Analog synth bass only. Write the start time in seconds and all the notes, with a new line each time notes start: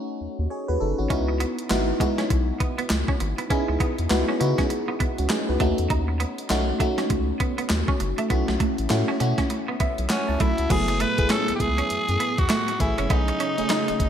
0.21 D#2
0.39 D#2
0.69 D#2
0.81 F#1
0.99 G#1
1.11 C#2
1.71 G#1
2.31 B1
2.91 C#2
3.21 G#1
3.69 C#2
3.99 E2
4.11 C#2
4.41 C#3
5.01 C#2
5.19 C#2
5.49 C#2
5.60 D#2
5.79 E2
5.91 D#2
6.51 B1
7.10 C#2
7.71 D#2
8.01 F#1
8.31 B1
8.49 B1
8.79 A1
8.91 A2
9.21 B2
9.80 B1
9.99 B1
10.29 C#2
10.41 B1
10.59 C#2
10.71 F#1
11.19 F#1
11.49 C#2
11.60 C#2
11.91 F#2
12.09 F#2
12.39 E2
12.80 A1
12.99 F#1
13.10 B1
13.59 F#1
13.89 F#1
14.00 F#1